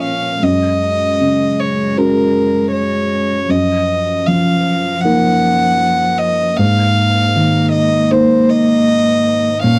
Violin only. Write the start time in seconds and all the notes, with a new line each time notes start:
0.03 F5
0.43 D#5
1.60 C#5
1.97 A#4
2.72 C#5
3.50 D#5
4.27 F5
5.01 F#5
6.18 D#5
6.57 F5
7.72 D#5
8.11 C5
8.49 D#5
9.63 F5